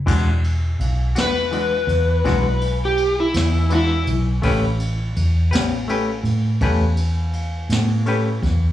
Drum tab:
CC |x-----------|------------|
RD |-xxxxxxxxxxx|xxxxxxxxxxxx|
SD |---o--o--o--|---o-----o-o|
BD |o-----o-----|o-----o----o|